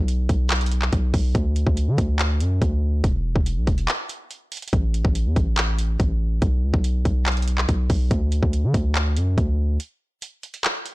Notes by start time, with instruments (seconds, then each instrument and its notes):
Already playing: 808-style bass B1
0.08 closed hi-hat
0.29 808-style bass B1, kick, closed hi-hat
0.50 clap, closed hi-hat
0.56 closed hi-hat
0.61 closed hi-hat
0.66 closed hi-hat
0.72 closed hi-hat
0.82 clap
0.93 808-style bass B1, kick, closed hi-hat
1.14 808-style bass B1, kick, open hi-hat
1.35 808-style bass D2, kick, closed hi-hat
1.56 closed hi-hat
1.67 808-style bass D2, kick
1.77 closed hi-hat
1.88 808-style bass D3
1.98 808-style bass D2, kick, closed hi-hat
2.19 clap, closed hi-hat
2.40 808-style bass F#2, closed hi-hat
2.62 808-style bass D2, kick, closed hi-hat
3.04 808-style bass E1, kick, closed hi-hat
3.36 808-style bass E1, kick
3.46 closed hi-hat
3.57 808-style bass B1
3.67 808-style bass E1, kick, closed hi-hat
3.78 closed hi-hat
3.88 clap, closed hi-hat
4.09 closed hi-hat
4.31 closed hi-hat
4.52 closed hi-hat, open hi-hat
4.57 closed hi-hat
4.62 closed hi-hat
4.68 closed hi-hat
4.73 808-style bass A1, kick, closed hi-hat
4.94 closed hi-hat
5.05 808-style bass A1, kick
5.15 closed hi-hat
5.26 808-style bass E2
5.36 808-style bass A1, kick, closed hi-hat
5.57 clap, closed hi-hat
5.79 closed hi-hat
6.00 808-style bass A1, kick, closed hi-hat
6.42 808-style bass B1, kick, closed hi-hat
6.63 808-style bass C#2
6.74 808-style bass B1, kick
6.84 closed hi-hat
7.05 808-style bass B1, kick, closed hi-hat
7.26 clap, closed hi-hat
7.32 closed hi-hat
7.37 closed hi-hat
7.42 closed hi-hat
7.48 closed hi-hat
7.58 clap
7.69 808-style bass B1, kick, closed hi-hat
7.90 808-style bass B1, kick, open hi-hat
8.11 808-style bass D2, kick, closed hi-hat
8.32 closed hi-hat
8.43 808-style bass D2, kick
8.53 closed hi-hat
8.64 808-style bass D3
8.74 808-style bass D2, kick, closed hi-hat
8.95 clap, closed hi-hat
9.16 808-style bass F#2, closed hi-hat
9.38 808-style bass D2, kick, closed hi-hat
9.80 closed hi-hat
10.22 closed hi-hat
10.43 closed hi-hat
10.54 closed hi-hat
10.64 clap, closed hi-hat
10.86 closed hi-hat